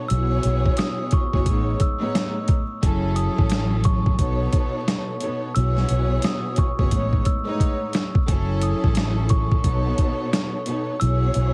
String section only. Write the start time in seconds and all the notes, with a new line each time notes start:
0.10 B2 B3 E4 F#4 G#4 C#5
1.33 B2 B3 E4 F#4 G#4 C#5
1.47 A2 G#3 B3 D#4 C#5
2.00 A2 G#3 B3 D#4 C#5
2.82 F#3 C#4 E4 G#4 A4
4.19 B2 B3 D#4 A4 C#5
5.21 B2 B3 D#4 A4 C#5
5.56 B2 B3 E4 F#4 G#4 C#5
6.79 B2 B3 E4 F#4 G#4 C#5
6.93 A2 G#3 B3 D#4 C#5
7.45 A2 G#3 B3 D#4 C#5
8.28 F#3 C#4 E4 G#4 A4
9.64 B2 B3 D#4 A4 C#5
10.66 B2 B3 D#4 A4 C#5
11.01 B2 B3 E4 F#4 G#4 C#5